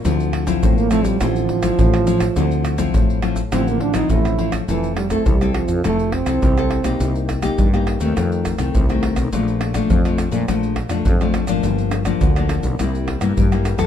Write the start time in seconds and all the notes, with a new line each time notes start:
0.05 D2 D3 F3 C4 E4, pandeiro, maracas, surdo
0.20 pandeiro, maracas
0.33 pandeiro, tamborim
0.47 F3 C4 E4, pandeiro, maracas, surdo
0.63 A1 A2 C4, pandeiro, maracas, surdo
0.77 A#3, pandeiro, maracas
0.90 F3 A3 C4 E4, pandeiro, tamborim, maracas
1.05 G3, pandeiro, maracas, surdo
1.21 A1 D3 F3 C4 E4, pandeiro, tamborim, maracas, surdo
1.36 pandeiro, maracas
1.49 pandeiro, surdo
1.62 F3 C4 E4, pandeiro, tamborim, maracas, surdo
1.79 A1 A2, pandeiro, maracas, surdo
1.94 pandeiro, tamborim, maracas
2.07 F3 C4 E4, pandeiro, maracas
2.20 pandeiro, tamborim, maracas, surdo
2.36 D2 D3 F3 C4 E4, pandeiro, maracas, surdo
2.51 pandeiro, maracas
2.65 pandeiro, tamborim, maracas
2.78 F3 C4 E4, pandeiro, maracas, surdo
2.94 A1 A2, pandeiro, maracas, surdo
3.10 pandeiro, maracas
3.22 F3 C4 E4, pandeiro, tamborim
3.36 pandeiro, maracas, surdo
3.52 A1 D3 F3 C4 E4, pandeiro, tamborim, maracas, surdo
3.68 A#3, pandeiro, maracas
3.80 D4, pandeiro, surdo
3.94 F3 C4 D#4 E4, pandeiro, tamborim, maracas, surdo
4.10 A1 A2 E4, pandeiro, maracas, surdo
4.25 pandeiro, tamborim, maracas
4.38 F3 C4 E4, pandeiro
4.52 pandeiro, tamborim, maracas, surdo
4.68 F1 E3 F3 C4 E4 A4, pandeiro, maracas, surdo
4.84 pandeiro, maracas
4.96 G3, pandeiro, tamborim
5.10 A3 C4 E4 A4, pandeiro, tamborim, maracas, surdo
5.26 C2 C3 G3, pandeiro, maracas, surdo
5.41 C4 E4 A4, pandeiro, tamborim, maracas
5.54 F3, pandeiro, tamborim
5.68 F2, pandeiro, maracas, surdo
5.84 F1 F3 A3 C4 E4 A4, pandeiro, tamborim, maracas, surdo
5.99 pandeiro, maracas
6.12 C4, pandeiro, tamborim, surdo
6.26 C2 C4 E4 A4, pandeiro, tamborim, maracas
6.42 C2 C3, pandeiro, maracas, surdo
6.58 C4 E4 A4, pandeiro, tamborim, maracas
6.71 pandeiro, tamborim
6.84 B1 A#3 D#4 G4, pandeiro, tamborim, maracas, surdo
7.00 C2 C3, pandeiro, maracas, surdo
7.15 pandeiro, maracas
7.29 pandeiro, tamborim, maracas, surdo
7.42 A#3 D#4 G4, pandeiro, tamborim, maracas, surdo
7.58 G2, pandeiro, maracas, surdo
7.74 A#3 D#4 G4, pandeiro, tamborim, maracas
7.87 pandeiro, tamborim
8.00 D#2 D#3 A3 C4, pandeiro, maracas, surdo
8.17 F2, pandeiro, tamborim, maracas, surdo
8.32 pandeiro, maracas
8.45 pandeiro, tamborim, maracas, surdo
8.58 C2 D#3 A3 C4, pandeiro, tamborim, maracas
8.75 C2 C3, pandeiro, maracas, surdo
8.89 D#3 A3 C4, pandeiro, tamborim, maracas
9.03 pandeiro, tamborim
9.16 B1, pandeiro, tamborim, maracas, surdo
9.32 A#1 A#2 F3 A3 D4, pandeiro, maracas, surdo
9.48 pandeiro, maracas
9.61 pandeiro, tamborim
9.74 F3 A3 D4, pandeiro, tamborim, maracas, surdo
9.90 F2, pandeiro, maracas, surdo
10.05 F3 A3 D4, pandeiro, tamborim, maracas
10.18 pandeiro, tamborim, maracas
10.31 A#2 F3 A3 D4, pandeiro, maracas, surdo
10.48 A#1 A#2 F3 A3 D4, pandeiro, tamborim, maracas, surdo
10.63 pandeiro, maracas
10.76 pandeiro, tamborim, surdo
10.89 F2 F3 A3 D4, pandeiro, tamborim, maracas
11.05 F2, pandeiro, maracas, surdo
11.21 F3 A3 D4, pandeiro, tamborim, maracas
11.34 pandeiro, tamborim, maracas
11.47 G#1 F3 A#3 D4, pandeiro, tamborim, maracas, surdo
11.63 G1 G2, pandeiro, maracas, surdo
11.78 pandeiro, maracas
11.91 pandeiro, tamborim, maracas
12.05 F3 A#3 D4, pandeiro, tamborim, maracas, surdo
12.21 D2 D3, pandeiro, maracas, surdo
12.36 F3 A#3 D4, pandeiro, tamborim, maracas
12.49 pandeiro, tamborim, maracas
12.63 B1, pandeiro, maracas, surdo
12.79 C2 C3 G3 A#3 E4, pandeiro, tamborim, maracas, surdo
12.95 pandeiro, maracas
13.08 pandeiro, tamborim, surdo
13.21 G2 G3 A#3 E4, pandeiro, tamborim, maracas
13.37 G2, pandeiro, maracas, surdo
13.52 G3 A#3 E4, pandeiro, tamborim, maracas
13.65 pandeiro, tamborim, maracas
13.78 E2 C4 E4 A4, pandeiro, tamborim, maracas, surdo